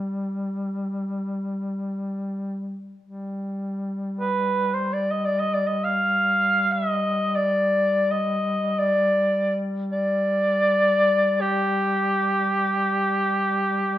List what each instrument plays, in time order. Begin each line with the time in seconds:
Already playing: duduk G3
3.02 duduk G3
4.20 cor anglais B4
4.74 cor anglais C5
4.93 cor anglais D5
5.11 cor anglais D#5
5.25 cor anglais D5
5.40 cor anglais D#5
5.54 cor anglais D5
5.67 cor anglais D#5
5.84 cor anglais F5
6.72 cor anglais E5
6.90 cor anglais D#5
7.36 cor anglais D5
8.11 cor anglais D#5
8.79 cor anglais D5
9.92 cor anglais D5
11.41 cor anglais G4